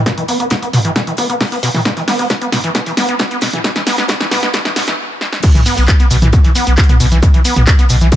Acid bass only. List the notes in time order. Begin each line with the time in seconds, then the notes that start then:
0.06 B2
0.18 E3
0.28 B3
0.40 B3
0.51 B2
0.62 B3
0.73 B2
0.85 E3
0.96 B2
1.07 E3
1.18 B3
1.30 B3
1.41 B2
1.52 B3
1.63 B2
1.74 E3
1.85 B2
1.97 E3
2.08 B3
2.19 B3
2.30 B2
2.42 B3
2.53 B2
2.64 E3
2.75 B2
2.86 E3
2.97 B3
3.09 B3
3.20 B2
3.31 B3
3.42 B2
3.54 E3
3.65 B2
3.76 E3
3.87 B3
3.98 B3
4.09 B2
4.21 E3
4.32 B3
4.43 B3
4.54 B2
4.65 E3
4.76 B2
4.88 E3
5.44 B2
5.55 E3
5.66 B3
5.77 B3
5.88 B2
6.00 B3
6.11 B2
6.22 E3
6.33 B2
6.45 E3
6.55 B3
6.67 B3
6.78 B2
6.89 B3
7.00 B2
7.12 E3
7.23 B2
7.34 E3
7.45 B3
7.56 B3
7.67 B2
7.79 B3
7.90 B2
8.01 E3
8.12 B2